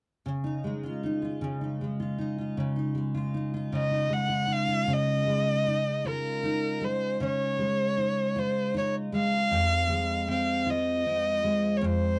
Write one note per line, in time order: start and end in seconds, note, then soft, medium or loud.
0.26 1.40 C#3 medium
0.44 1.03 D#4 soft
0.64 1.81 G#3 soft
0.83 1.22 F4 soft
1.03 1.61 D#4 soft
1.22 1.99 F4 soft
1.41 2.56 C#3 medium
1.61 2.18 D#4 soft
1.81 2.94 G#3 soft
2.00 2.38 F4 soft
2.18 2.76 D#4 soft
2.38 3.14 F4 soft
2.57 3.71 C#3 medium
2.76 3.34 D#4 soft
2.95 4.09 G#3 soft
3.15 3.53 F4 soft
3.34 3.90 D#4 soft
3.54 4.28 F4 soft
3.72 4.86 C#3 medium
3.72 4.14 D#5 medium
3.91 4.46 D#4 soft
4.10 5.26 G#3 soft
4.10 4.54 F#5 medium
4.29 4.67 F4 soft
4.47 5.66 D#4 soft
4.53 4.94 F5 medium
4.67 5.70 F4 soft
4.87 7.19 C#3 medium
4.93 6.09 D#5 medium
5.27 6.80 G#3 soft
5.67 6.43 D#4 soft
6.05 8.35 F4 soft
6.05 6.86 A#4 medium
6.43 7.97 D#4 soft
6.81 7.58 G#3 soft
6.81 7.22 C5 medium
7.20 9.51 C#3 medium
7.24 8.40 C#5 medium
7.58 9.12 G#3 soft
7.98 8.74 D#4 soft
8.36 10.66 F4 medium
8.36 8.76 C5 medium
8.74 10.28 D#4 soft
8.74 8.94 C#5 medium
9.12 9.89 G#3 soft
9.12 10.26 F5 loud
9.51 11.80 F2 medium
9.89 11.43 G#3 soft
10.28 11.05 C4 soft
10.28 10.72 F5 medium
10.66 12.19 F4 medium
10.71 11.78 D#5 medium
11.06 12.19 C4 soft
11.44 12.19 G#3 soft
11.77 11.87 C#5 medium
11.81 12.19 F2 medium
11.86 12.19 C5 medium